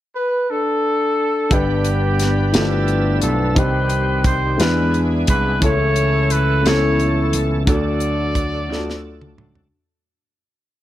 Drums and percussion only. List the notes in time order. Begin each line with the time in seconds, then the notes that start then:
1.51 kick, closed hi-hat
1.85 closed hi-hat
2.19 snare, closed hi-hat
2.54 snare, closed hi-hat
2.88 closed hi-hat
3.22 closed hi-hat
3.56 kick, closed hi-hat
3.90 closed hi-hat
4.24 kick, closed hi-hat
4.60 snare, closed hi-hat
4.94 closed hi-hat
5.27 kick, closed hi-hat
5.62 kick, closed hi-hat
5.96 closed hi-hat
6.30 closed hi-hat
6.66 snare, closed hi-hat
7.00 closed hi-hat
7.33 closed hi-hat
7.67 kick, closed hi-hat
8.00 closed hi-hat
8.35 kick, closed hi-hat
8.73 snare
8.90 snare
9.21 mid tom
9.38 mid tom
9.55 floor tom